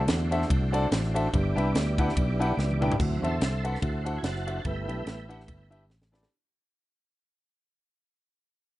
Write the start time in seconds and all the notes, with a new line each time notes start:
Already playing: D3 A3 D4 E4 F#4 C5
0.08 E2, snare, ride bell
0.31 D4 F#4 A4 C5 E5, ride bell
0.42 snare
0.50 C2, kick, ride bell
0.72 D4 F#4 A4 C5 D5, ride bell
0.91 A1, snare, ride bell
1.03 snare
1.14 D4 F#4 A4 C5 E5, ride bell
1.33 G1 G2 B3 D4 E4 G4 C5, kick, ride bell
1.38 D5
1.56 C2 D4 E4 G4 B4 E5, ride bell
1.74 D2, snare, ride bell
1.98 D4 E4 G4 B4 F#5, kick, ride bell
2.09 snare
2.17 B1, kick, ride bell
2.39 D4 E4 G4 B4 F#5, ride bell
2.57 C#2, snare
2.71 high tom
2.81 D4 E4 G4 B4 G5, mid tom
2.92 floor tom
2.99 D2 D3 F#3 C4 E4, kick, crash
3.22 E2 D4 F#4 A4 C5 E5, ride bell
3.41 C2, snare, ride bell
3.63 D4 F#4 A4 B4 C5 F#5, ride bell
3.75 snare
3.82 D2 E4 F#4 C5, kick, ride bell
4.05 D4 F#4 A4 C5 F#5, ride bell
4.18 G#5
4.23 F#1 C5 F#5 A5, snare, ride bell
4.36 snare
4.47 D4 F#4 A4 C5 E5, ride bell
4.64 G1 G2 A3 B3 E4 B4 E5 G5, kick, ride bell
4.88 B1 D4 E4 G4 B4 E5, ride bell
5.06 A1, snare, ride bell
5.29 D4 E4 G4 B4 F#5, ride bell
5.40 snare
5.47 G1 A3 B3 E4, kick, ride bell
5.70 D4 E4 G4 B4 E5, ride bell
5.89 A1, snare
6.02 snare
6.12 D4 E4 G4 B4 D5, snare
6.23 snare